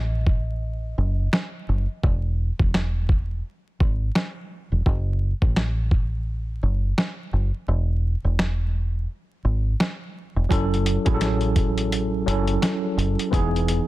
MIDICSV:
0, 0, Header, 1, 4, 480
1, 0, Start_track
1, 0, Tempo, 705882
1, 1384, Time_signature, 4, 2, 24, 8
1, 9434, End_track
2, 0, Start_track
2, 0, Title_t, "Tine electric piano"
2, 0, Program_c, 0, 4
2, 0, Control_c, 0, 64, 127
2, 1393, Control_c, 0, 64, 0
2, 7133, Note_on_c, 0, 54, 86
2, 7141, Note_on_c, 0, 61, 73
2, 7147, Note_on_c, 0, 64, 78
2, 7153, Note_on_c, 0, 69, 94
2, 7256, Control_c, 0, 64, 127
2, 7384, Note_off_c, 0, 54, 0
2, 7388, Note_off_c, 0, 61, 0
2, 7391, Note_off_c, 0, 64, 0
2, 7394, Note_off_c, 0, 69, 0
2, 7515, Note_on_c, 0, 54, 89
2, 7521, Note_on_c, 0, 61, 74
2, 7528, Note_on_c, 0, 64, 79
2, 7535, Note_on_c, 0, 68, 77
2, 7566, Note_off_c, 0, 68, 0
2, 7579, Note_on_c, 0, 69, 83
2, 8074, Note_off_c, 0, 54, 0
2, 8077, Note_off_c, 0, 61, 0
2, 8081, Note_off_c, 0, 64, 0
2, 8106, Note_off_c, 0, 69, 0
2, 8338, Note_on_c, 0, 54, 80
2, 8344, Note_on_c, 0, 61, 81
2, 8351, Note_on_c, 0, 64, 80
2, 8358, Note_on_c, 0, 69, 82
2, 8831, Note_off_c, 0, 54, 0
2, 8834, Note_off_c, 0, 61, 0
2, 8838, Note_off_c, 0, 64, 0
2, 8841, Note_off_c, 0, 69, 0
2, 9049, Note_on_c, 0, 52, 92
2, 9056, Note_on_c, 0, 59, 76
2, 9062, Note_on_c, 0, 63, 74
2, 9068, Note_on_c, 0, 68, 98
2, 9074, Control_c, 0, 64, 0
2, 9177, Control_c, 0, 64, 127
2, 9302, Note_off_c, 0, 52, 0
2, 9305, Note_off_c, 0, 59, 0
2, 9308, Note_off_c, 0, 63, 0
2, 9312, Note_off_c, 0, 68, 0
2, 9434, End_track
3, 0, Start_track
3, 0, Title_t, "Fingered electric bass"
3, 0, Program_c, 1, 33
3, 0, Note_on_c, 1, 33, 84
3, 637, Note_off_c, 1, 33, 0
3, 666, Note_on_c, 1, 30, 94
3, 862, Note_off_c, 1, 30, 0
3, 1148, Note_on_c, 1, 30, 94
3, 1262, Note_off_c, 1, 30, 0
3, 1385, Note_on_c, 1, 28, 110
3, 1697, Note_off_c, 1, 28, 0
3, 1765, Note_on_c, 1, 28, 90
3, 2317, Note_off_c, 1, 28, 0
3, 2587, Note_on_c, 1, 32, 88
3, 2783, Note_off_c, 1, 32, 0
3, 3208, Note_on_c, 1, 28, 91
3, 3288, Note_off_c, 1, 28, 0
3, 3306, Note_on_c, 1, 30, 103
3, 3618, Note_off_c, 1, 30, 0
3, 3686, Note_on_c, 1, 33, 87
3, 4477, Note_off_c, 1, 33, 0
3, 4507, Note_on_c, 1, 30, 89
3, 4702, Note_off_c, 1, 30, 0
3, 4986, Note_on_c, 1, 30, 95
3, 5101, Note_off_c, 1, 30, 0
3, 5225, Note_on_c, 1, 28, 110
3, 5537, Note_off_c, 1, 28, 0
3, 5606, Note_on_c, 1, 28, 87
3, 6157, Note_off_c, 1, 28, 0
3, 6424, Note_on_c, 1, 32, 86
3, 6621, Note_off_c, 1, 32, 0
3, 7046, Note_on_c, 1, 28, 86
3, 7127, Note_off_c, 1, 28, 0
3, 7144, Note_on_c, 1, 30, 102
3, 7457, Note_off_c, 1, 30, 0
3, 7524, Note_on_c, 1, 33, 87
3, 8316, Note_off_c, 1, 33, 0
3, 8344, Note_on_c, 1, 30, 92
3, 8541, Note_off_c, 1, 30, 0
3, 8824, Note_on_c, 1, 30, 95
3, 8940, Note_off_c, 1, 30, 0
3, 9064, Note_on_c, 1, 28, 107
3, 9377, Note_off_c, 1, 28, 0
3, 9434, End_track
4, 0, Start_track
4, 0, Title_t, "Drums"
4, 181, Note_on_c, 9, 36, 97
4, 249, Note_off_c, 9, 36, 0
4, 903, Note_on_c, 9, 40, 89
4, 907, Note_on_c, 9, 38, 111
4, 971, Note_off_c, 9, 40, 0
4, 975, Note_off_c, 9, 38, 0
4, 1384, Note_on_c, 9, 36, 112
4, 1452, Note_off_c, 9, 36, 0
4, 1764, Note_on_c, 9, 36, 95
4, 1832, Note_off_c, 9, 36, 0
4, 1865, Note_on_c, 9, 40, 83
4, 1868, Note_on_c, 9, 38, 102
4, 1933, Note_off_c, 9, 40, 0
4, 1936, Note_off_c, 9, 38, 0
4, 2101, Note_on_c, 9, 36, 96
4, 2169, Note_off_c, 9, 36, 0
4, 2587, Note_on_c, 9, 36, 96
4, 2655, Note_off_c, 9, 36, 0
4, 2825, Note_on_c, 9, 40, 89
4, 2828, Note_on_c, 9, 38, 115
4, 2893, Note_off_c, 9, 40, 0
4, 2896, Note_off_c, 9, 38, 0
4, 3305, Note_on_c, 9, 36, 112
4, 3373, Note_off_c, 9, 36, 0
4, 3685, Note_on_c, 9, 36, 92
4, 3753, Note_off_c, 9, 36, 0
4, 3784, Note_on_c, 9, 40, 81
4, 3787, Note_on_c, 9, 38, 106
4, 3852, Note_off_c, 9, 40, 0
4, 3855, Note_off_c, 9, 38, 0
4, 4021, Note_on_c, 9, 36, 95
4, 4089, Note_off_c, 9, 36, 0
4, 4745, Note_on_c, 9, 40, 89
4, 4749, Note_on_c, 9, 38, 113
4, 4813, Note_off_c, 9, 40, 0
4, 4817, Note_off_c, 9, 38, 0
4, 5705, Note_on_c, 9, 40, 85
4, 5709, Note_on_c, 9, 38, 106
4, 5773, Note_off_c, 9, 40, 0
4, 5777, Note_off_c, 9, 38, 0
4, 6665, Note_on_c, 9, 40, 92
4, 6668, Note_on_c, 9, 38, 112
4, 6733, Note_off_c, 9, 40, 0
4, 6736, Note_off_c, 9, 38, 0
4, 7144, Note_on_c, 9, 36, 115
4, 7150, Note_on_c, 9, 42, 88
4, 7212, Note_off_c, 9, 36, 0
4, 7218, Note_off_c, 9, 42, 0
4, 7301, Note_on_c, 9, 42, 36
4, 7369, Note_off_c, 9, 42, 0
4, 7385, Note_on_c, 9, 42, 76
4, 7453, Note_off_c, 9, 42, 0
4, 7520, Note_on_c, 9, 42, 53
4, 7524, Note_on_c, 9, 36, 97
4, 7588, Note_off_c, 9, 42, 0
4, 7592, Note_off_c, 9, 36, 0
4, 7622, Note_on_c, 9, 42, 98
4, 7623, Note_on_c, 9, 40, 84
4, 7627, Note_on_c, 9, 38, 108
4, 7690, Note_off_c, 9, 42, 0
4, 7691, Note_off_c, 9, 40, 0
4, 7695, Note_off_c, 9, 38, 0
4, 7758, Note_on_c, 9, 42, 34
4, 7826, Note_off_c, 9, 42, 0
4, 7860, Note_on_c, 9, 42, 83
4, 7861, Note_on_c, 9, 36, 95
4, 7928, Note_off_c, 9, 42, 0
4, 7929, Note_off_c, 9, 36, 0
4, 8007, Note_on_c, 9, 42, 51
4, 8075, Note_off_c, 9, 42, 0
4, 8108, Note_on_c, 9, 42, 90
4, 8176, Note_off_c, 9, 42, 0
4, 8350, Note_on_c, 9, 42, 71
4, 8418, Note_off_c, 9, 42, 0
4, 8483, Note_on_c, 9, 42, 48
4, 8551, Note_off_c, 9, 42, 0
4, 8584, Note_on_c, 9, 40, 91
4, 8586, Note_on_c, 9, 42, 91
4, 8588, Note_on_c, 9, 38, 117
4, 8652, Note_off_c, 9, 40, 0
4, 8654, Note_off_c, 9, 42, 0
4, 8656, Note_off_c, 9, 38, 0
4, 8831, Note_on_c, 9, 42, 68
4, 8899, Note_off_c, 9, 42, 0
4, 8972, Note_on_c, 9, 42, 48
4, 9040, Note_off_c, 9, 42, 0
4, 9063, Note_on_c, 9, 36, 114
4, 9069, Note_on_c, 9, 42, 92
4, 9131, Note_off_c, 9, 36, 0
4, 9137, Note_off_c, 9, 42, 0
4, 9222, Note_on_c, 9, 42, 36
4, 9290, Note_off_c, 9, 42, 0
4, 9305, Note_on_c, 9, 42, 75
4, 9373, Note_off_c, 9, 42, 0
4, 9434, End_track
0, 0, End_of_file